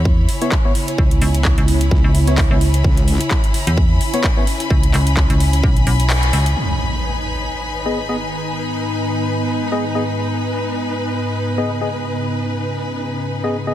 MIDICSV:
0, 0, Header, 1, 8, 480
1, 0, Start_track
1, 0, Key_signature, 5, "minor"
1, 0, Tempo, 465116
1, 1015, Time_signature, 4, 2, 24, 8
1, 14182, End_track
2, 0, Start_track
2, 0, Title_t, "String section"
2, 0, Program_c, 0, 48
2, 0, Note_on_c, 0, 64, 73
2, 0, Note_on_c, 0, 73, 75
2, 0, Note_on_c, 0, 83, 97
2, 344, Note_on_c, 0, 80, 74
2, 6774, Note_off_c, 0, 64, 0
2, 6774, Note_on_c, 0, 63, 79
2, 7184, Note_on_c, 0, 71, 84
2, 8334, Note_off_c, 0, 73, 0
2, 14182, Note_off_c, 0, 63, 0
2, 14182, Note_off_c, 0, 71, 0
2, 14182, Note_off_c, 0, 80, 0
2, 14182, Note_off_c, 0, 83, 0
2, 14182, End_track
3, 0, Start_track
3, 0, Title_t, "Synth stab"
3, 0, Program_c, 1, 62
3, 428, Note_on_c, 1, 64, 86
3, 428, Note_on_c, 1, 73, 98
3, 429, Note_on_c, 1, 59, 87
3, 560, Note_off_c, 1, 59, 0
3, 560, Note_off_c, 1, 64, 0
3, 560, Note_off_c, 1, 73, 0
3, 669, Note_on_c, 1, 59, 80
3, 669, Note_on_c, 1, 64, 74
3, 669, Note_on_c, 1, 73, 91
3, 748, Note_off_c, 1, 59, 0
3, 748, Note_off_c, 1, 64, 0
3, 748, Note_off_c, 1, 73, 0
3, 2348, Note_on_c, 1, 64, 83
3, 2348, Note_on_c, 1, 73, 102
3, 2349, Note_on_c, 1, 59, 91
3, 2480, Note_off_c, 1, 59, 0
3, 2480, Note_off_c, 1, 64, 0
3, 2480, Note_off_c, 1, 73, 0
3, 2588, Note_on_c, 1, 59, 83
3, 2588, Note_on_c, 1, 64, 76
3, 2588, Note_on_c, 1, 73, 91
3, 2668, Note_off_c, 1, 59, 0
3, 2668, Note_off_c, 1, 64, 0
3, 2668, Note_off_c, 1, 73, 0
3, 4269, Note_on_c, 1, 59, 89
3, 4269, Note_on_c, 1, 64, 80
3, 4269, Note_on_c, 1, 73, 101
3, 4400, Note_off_c, 1, 73, 0
3, 4401, Note_off_c, 1, 59, 0
3, 4401, Note_off_c, 1, 64, 0
3, 4508, Note_on_c, 1, 64, 75
3, 4509, Note_on_c, 1, 59, 83
3, 4509, Note_on_c, 1, 73, 89
3, 4588, Note_off_c, 1, 59, 0
3, 4588, Note_off_c, 1, 64, 0
3, 4588, Note_off_c, 1, 73, 0
3, 8108, Note_on_c, 1, 59, 88
3, 8109, Note_on_c, 1, 68, 79
3, 8109, Note_on_c, 1, 75, 94
3, 8240, Note_off_c, 1, 59, 0
3, 8240, Note_off_c, 1, 68, 0
3, 8240, Note_off_c, 1, 75, 0
3, 8348, Note_on_c, 1, 59, 81
3, 8349, Note_on_c, 1, 68, 68
3, 8349, Note_on_c, 1, 75, 85
3, 8428, Note_off_c, 1, 59, 0
3, 8428, Note_off_c, 1, 68, 0
3, 8428, Note_off_c, 1, 75, 0
3, 10029, Note_on_c, 1, 68, 78
3, 10029, Note_on_c, 1, 75, 96
3, 10030, Note_on_c, 1, 59, 85
3, 10161, Note_off_c, 1, 59, 0
3, 10161, Note_off_c, 1, 68, 0
3, 10161, Note_off_c, 1, 75, 0
3, 10269, Note_on_c, 1, 75, 87
3, 10270, Note_on_c, 1, 59, 78
3, 10270, Note_on_c, 1, 68, 74
3, 10348, Note_off_c, 1, 59, 0
3, 10348, Note_off_c, 1, 68, 0
3, 10348, Note_off_c, 1, 75, 0
3, 11948, Note_on_c, 1, 68, 78
3, 11949, Note_on_c, 1, 59, 88
3, 11949, Note_on_c, 1, 75, 99
3, 12080, Note_off_c, 1, 68, 0
3, 12080, Note_off_c, 1, 75, 0
3, 12081, Note_off_c, 1, 59, 0
3, 12189, Note_on_c, 1, 59, 80
3, 12189, Note_on_c, 1, 68, 73
3, 12189, Note_on_c, 1, 75, 85
3, 12268, Note_off_c, 1, 59, 0
3, 12268, Note_off_c, 1, 68, 0
3, 12268, Note_off_c, 1, 75, 0
3, 13868, Note_on_c, 1, 59, 80
3, 13868, Note_on_c, 1, 68, 77
3, 13868, Note_on_c, 1, 75, 94
3, 14000, Note_off_c, 1, 59, 0
3, 14000, Note_off_c, 1, 68, 0
3, 14000, Note_off_c, 1, 75, 0
3, 14109, Note_on_c, 1, 59, 81
3, 14109, Note_on_c, 1, 68, 73
3, 14109, Note_on_c, 1, 75, 84
3, 14182, Note_off_c, 1, 59, 0
3, 14182, Note_off_c, 1, 68, 0
3, 14182, Note_off_c, 1, 75, 0
3, 14182, End_track
4, 0, Start_track
4, 0, Title_t, "Analog synth pad"
4, 0, Program_c, 2, 89
4, 0, Note_on_c, 2, 49, 85
4, 0, Note_on_c, 2, 59, 77
4, 0, Note_on_c, 2, 64, 94
4, 2897, Note_off_c, 2, 59, 0
4, 2936, Note_on_c, 2, 61, 78
4, 6734, Note_off_c, 2, 49, 0
4, 6735, Note_off_c, 2, 64, 0
4, 6738, Note_off_c, 2, 61, 0
4, 6776, Note_on_c, 2, 44, 76
4, 6776, Note_on_c, 2, 51, 73
4, 6776, Note_on_c, 2, 59, 88
4, 10578, Note_off_c, 2, 51, 0
4, 10616, Note_on_c, 2, 49, 70
4, 14182, Note_off_c, 2, 44, 0
4, 14182, Note_off_c, 2, 49, 0
4, 14182, Note_off_c, 2, 59, 0
4, 14182, End_track
5, 0, Start_track
5, 0, Title_t, "FM bass"
5, 0, Program_c, 3, 39
5, 0, Note_on_c, 3, 40, 94
5, 279, Note_off_c, 3, 40, 0
5, 1015, Note_on_c, 3, 37, 92
5, 1238, Note_off_c, 3, 37, 0
5, 1255, Note_on_c, 3, 37, 98
5, 1607, Note_off_c, 3, 37, 0
5, 1629, Note_on_c, 3, 37, 97
5, 1959, Note_off_c, 3, 37, 0
5, 2107, Note_on_c, 3, 37, 99
5, 2567, Note_off_c, 3, 37, 0
5, 2589, Note_on_c, 3, 37, 102
5, 2918, Note_off_c, 3, 37, 0
5, 3789, Note_on_c, 3, 40, 93
5, 4119, Note_off_c, 3, 40, 0
5, 4855, Note_on_c, 3, 37, 93
5, 5078, Note_off_c, 3, 37, 0
5, 5096, Note_on_c, 3, 37, 96
5, 5448, Note_off_c, 3, 37, 0
5, 5469, Note_on_c, 3, 37, 96
5, 5799, Note_off_c, 3, 37, 0
5, 5816, Note_on_c, 3, 35, 101
5, 6039, Note_off_c, 3, 35, 0
5, 6055, Note_on_c, 3, 35, 95
5, 6519, Note_off_c, 3, 35, 0
5, 6536, Note_on_c, 3, 37, 90
5, 6759, Note_off_c, 3, 37, 0
5, 14182, End_track
6, 0, Start_track
6, 0, Title_t, "Wobble bass"
6, 0, Program_c, 4, 39
6, 1975, Note_on_c, 4, 37, 95
6, 2087, Note_off_c, 4, 37, 0
6, 2936, Note_on_c, 4, 37, 94
6, 3288, Note_off_c, 4, 37, 0
6, 14182, End_track
7, 0, Start_track
7, 0, Title_t, "Impact"
7, 0, Program_c, 5, 103
7, 6776, Note_on_c, 5, 60, 69
7, 8696, Note_off_c, 5, 60, 0
7, 14182, End_track
8, 0, Start_track
8, 0, Title_t, "Drums"
8, 55, Note_on_c, 9, 36, 117
8, 158, Note_off_c, 9, 36, 0
8, 295, Note_on_c, 9, 46, 115
8, 398, Note_off_c, 9, 46, 0
8, 429, Note_on_c, 9, 42, 60
8, 532, Note_off_c, 9, 42, 0
8, 535, Note_on_c, 9, 36, 125
8, 535, Note_on_c, 9, 39, 116
8, 638, Note_off_c, 9, 36, 0
8, 639, Note_off_c, 9, 39, 0
8, 775, Note_on_c, 9, 46, 101
8, 878, Note_off_c, 9, 46, 0
8, 909, Note_on_c, 9, 42, 69
8, 1012, Note_off_c, 9, 42, 0
8, 1015, Note_on_c, 9, 36, 111
8, 1118, Note_off_c, 9, 36, 0
8, 1149, Note_on_c, 9, 42, 56
8, 1252, Note_off_c, 9, 42, 0
8, 1254, Note_on_c, 9, 46, 107
8, 1357, Note_off_c, 9, 46, 0
8, 1388, Note_on_c, 9, 42, 65
8, 1492, Note_off_c, 9, 42, 0
8, 1495, Note_on_c, 9, 36, 112
8, 1495, Note_on_c, 9, 39, 119
8, 1598, Note_off_c, 9, 36, 0
8, 1598, Note_off_c, 9, 39, 0
8, 1628, Note_on_c, 9, 42, 55
8, 1731, Note_off_c, 9, 42, 0
8, 1734, Note_on_c, 9, 46, 105
8, 1837, Note_off_c, 9, 46, 0
8, 1868, Note_on_c, 9, 42, 67
8, 1971, Note_off_c, 9, 42, 0
8, 1975, Note_on_c, 9, 36, 120
8, 2078, Note_off_c, 9, 36, 0
8, 2215, Note_on_c, 9, 46, 107
8, 2318, Note_off_c, 9, 46, 0
8, 2347, Note_on_c, 9, 42, 60
8, 2451, Note_off_c, 9, 42, 0
8, 2454, Note_on_c, 9, 39, 119
8, 2454, Note_on_c, 9, 46, 62
8, 2455, Note_on_c, 9, 36, 120
8, 2558, Note_off_c, 9, 39, 0
8, 2558, Note_off_c, 9, 46, 0
8, 2559, Note_off_c, 9, 36, 0
8, 2695, Note_on_c, 9, 46, 98
8, 2798, Note_off_c, 9, 46, 0
8, 2828, Note_on_c, 9, 42, 69
8, 2932, Note_off_c, 9, 42, 0
8, 2936, Note_on_c, 9, 36, 111
8, 3039, Note_off_c, 9, 36, 0
8, 3069, Note_on_c, 9, 42, 57
8, 3172, Note_off_c, 9, 42, 0
8, 3175, Note_on_c, 9, 46, 100
8, 3278, Note_off_c, 9, 46, 0
8, 3308, Note_on_c, 9, 42, 70
8, 3411, Note_off_c, 9, 42, 0
8, 3415, Note_on_c, 9, 39, 116
8, 3416, Note_on_c, 9, 36, 111
8, 3518, Note_off_c, 9, 39, 0
8, 3519, Note_off_c, 9, 36, 0
8, 3548, Note_on_c, 9, 42, 57
8, 3651, Note_off_c, 9, 42, 0
8, 3655, Note_on_c, 9, 46, 104
8, 3758, Note_off_c, 9, 46, 0
8, 3789, Note_on_c, 9, 42, 70
8, 3892, Note_off_c, 9, 42, 0
8, 3896, Note_on_c, 9, 36, 109
8, 3999, Note_off_c, 9, 36, 0
8, 4136, Note_on_c, 9, 46, 100
8, 4239, Note_off_c, 9, 46, 0
8, 4269, Note_on_c, 9, 42, 67
8, 4372, Note_off_c, 9, 42, 0
8, 4375, Note_on_c, 9, 36, 115
8, 4376, Note_on_c, 9, 39, 118
8, 4478, Note_off_c, 9, 36, 0
8, 4479, Note_off_c, 9, 39, 0
8, 4616, Note_on_c, 9, 46, 95
8, 4719, Note_off_c, 9, 46, 0
8, 4749, Note_on_c, 9, 42, 72
8, 4852, Note_off_c, 9, 42, 0
8, 4855, Note_on_c, 9, 36, 108
8, 4958, Note_off_c, 9, 36, 0
8, 4989, Note_on_c, 9, 42, 61
8, 5092, Note_off_c, 9, 42, 0
8, 5097, Note_on_c, 9, 39, 66
8, 5097, Note_on_c, 9, 46, 100
8, 5200, Note_off_c, 9, 39, 0
8, 5200, Note_off_c, 9, 46, 0
8, 5230, Note_on_c, 9, 42, 74
8, 5333, Note_off_c, 9, 42, 0
8, 5335, Note_on_c, 9, 36, 107
8, 5336, Note_on_c, 9, 39, 123
8, 5439, Note_off_c, 9, 36, 0
8, 5439, Note_off_c, 9, 39, 0
8, 5470, Note_on_c, 9, 42, 59
8, 5573, Note_off_c, 9, 42, 0
8, 5577, Note_on_c, 9, 46, 106
8, 5680, Note_off_c, 9, 46, 0
8, 5711, Note_on_c, 9, 42, 74
8, 5814, Note_off_c, 9, 42, 0
8, 5816, Note_on_c, 9, 36, 112
8, 5919, Note_off_c, 9, 36, 0
8, 5950, Note_on_c, 9, 42, 41
8, 6053, Note_off_c, 9, 42, 0
8, 6056, Note_on_c, 9, 46, 105
8, 6159, Note_off_c, 9, 46, 0
8, 6189, Note_on_c, 9, 42, 68
8, 6293, Note_off_c, 9, 42, 0
8, 6296, Note_on_c, 9, 39, 126
8, 6296, Note_on_c, 9, 46, 61
8, 6399, Note_off_c, 9, 39, 0
8, 6399, Note_off_c, 9, 46, 0
8, 6429, Note_on_c, 9, 42, 39
8, 6532, Note_off_c, 9, 42, 0
8, 6535, Note_on_c, 9, 46, 103
8, 6638, Note_off_c, 9, 46, 0
8, 6669, Note_on_c, 9, 42, 71
8, 6772, Note_off_c, 9, 42, 0
8, 14182, End_track
0, 0, End_of_file